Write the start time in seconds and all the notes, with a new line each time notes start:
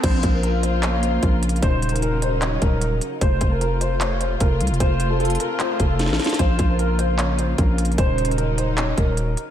0.03 A#1 C#3 A#3 F4 C5, kick, closed hi-hat, crash
0.23 A#1, kick, closed hi-hat
0.33 A#4
0.43 A#4, closed hi-hat
0.63 C5, closed hi-hat
0.83 C#5, clap, closed hi-hat
1.03 C5, closed hi-hat
1.23 A#1 A#4, kick, closed hi-hat
1.43 closed hi-hat
1.49 closed hi-hat
1.56 closed hi-hat
1.62 D#1 F#3 D#4 C5, kick, closed hi-hat
1.82 closed hi-hat
1.89 A#4, closed hi-hat
1.96 closed hi-hat
2.02 A#4, closed hi-hat
2.22 C5, closed hi-hat
2.42 C#5, clap, closed hi-hat
2.62 D#1 A#4, kick, closed hi-hat
2.81 closed hi-hat
3.01 closed hi-hat
3.21 F1 C3 A3 F4 C5, kick, closed hi-hat
3.41 F1, kick, closed hi-hat
3.51 A#4
3.61 A#4, closed hi-hat
3.81 C5, closed hi-hat
4.01 C#5, clap, closed hi-hat
4.20 C5, closed hi-hat
4.40 F1 A#4, kick, closed hi-hat
4.60 C2, closed hi-hat
4.67 F1, closed hi-hat
4.74 closed hi-hat
4.80 F1 C5, kick, closed hi-hat
5.00 closed hi-hat
5.10 A4
5.20 A4, closed hi-hat
5.25 closed hi-hat
5.30 closed hi-hat
5.35 closed hi-hat
5.40 A#4, closed hi-hat
5.60 C5, clap, closed hi-hat
5.80 F1 A4, kick, closed hi-hat
5.99 snare, closed hi-hat
6.06 A1, snare
6.13 snare
6.19 snare, closed hi-hat
6.24 snare, closed hi-hat
6.29 snare, closed hi-hat
6.34 closed hi-hat
6.39 A#1 C#3 A#3 C5, kick, closed hi-hat
6.59 A#1, kick, closed hi-hat
6.69 A#4
6.79 A#4, closed hi-hat
6.99 C5, closed hi-hat
7.19 C#5, clap, closed hi-hat
7.39 C5, closed hi-hat
7.58 A#1 A#4, kick, closed hi-hat
7.78 closed hi-hat
7.85 closed hi-hat
7.92 closed hi-hat
7.98 D#1 F#3 D#4 C5, kick, closed hi-hat
8.18 closed hi-hat
8.25 A#4, closed hi-hat
8.31 closed hi-hat
8.38 A#4, closed hi-hat
8.58 C5, closed hi-hat
8.78 C#5, clap, closed hi-hat
8.97 D#1 A#4, kick, closed hi-hat
9.17 closed hi-hat
9.37 closed hi-hat